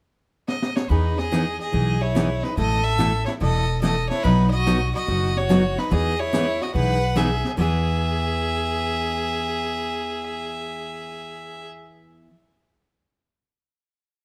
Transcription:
0.48 D#5, snare
0.62 snare
0.76 C#5, snare
0.89 E2 E3 B3 D#4 G#4 B4, brush sweep, kick
1.18 G#4 D#5, snare
1.32 E3 B3 D#4 G#4, snare, hi-hat pedal
1.60 G#4 D#5
1.72 B1 E3 B3 D#4 G#4, brush sweep, kick
2.01 E4 C#5
2.15 E3 B3 D#4 G#4, snare, hi-hat pedal
2.43 D#4 B4, snare
2.57 A1 B2 E3 A3 E4 A4 D#5, brush sweep, kick
2.84 A4 E5
2.98 B2 E3 A3 E4 A4, snare, hi-hat pedal
3.26 E4 C#5, snare
3.40 E1 B2 E3 A3 E4 A4 D#5, brush sweep, kick
3.81 B2 E3 A3 E4 A4 D#5, snare, hi-hat pedal
4.09 E4 C#5, snare
4.23 B1 B2 F#3 B3 D#4 F#4 B4, brush sweep, kick
4.51 D#5
4.55 F#4
4.66 B2 F#3 B3 D#4 F#4, snare, hi-hat pedal
4.95 F#4 D#5
5.07 F#1 B2 F#3 B3 D#4 F#4, brush sweep, kick
5.36 F#4 C#5, snare
5.49 B2 F#3 B3 D#4 F#4, snare, hi-hat pedal
5.78 D#4 B4, snare
5.91 E2 E3 B3 D#4 G#4 D#5, brush sweep, kick
6.20 E4 C#5
6.33 E3 B3 D#4 G#4, snare, hi-hat pedal
6.62 F#4 D#5, snare
6.74 B1 E3 B3 D#4 G#4 B4 F#5, brush sweep, kick
7.16 E3 B3 D#4 G#4 E5, snare, hi-hat pedal
7.45 snare
7.57 E2 E3 B3 G#4 E5

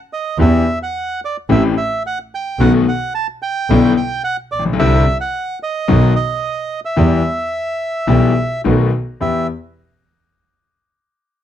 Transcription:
0.13 D#5
0.38 E2 E3 B3 D4 G4 E5
0.83 F#5
1.25 D5
1.49 A1 A2 E3 A3 C4 G4 E5
1.77 E5
2.07 F#5
2.35 G5
2.59 B1 B2 D#3 A3 B3 F#4 F#5
2.88 F#5
3.15 A5
3.42 G5
3.69 B1 B2 D3 G3 B3 E4
3.97 G5
4.24 F#5
4.52 A#1 D5
4.59 A1
4.66 A#1
4.73 B1
4.79 C2 C3 D3 G3 C4 E4 E5
5.21 F#5
5.63 D#5
5.88 B1 B2 D#3 F#3 B3 F#4
6.16 D#5
6.85 E5
6.96 E2 E3 G3 B3 G4
8.07 B1 B2 E3 G3 B3 G4
8.64 B1 B2 D#3 A3 B3 F#4
9.21 E2 B3 E4 G4 E5

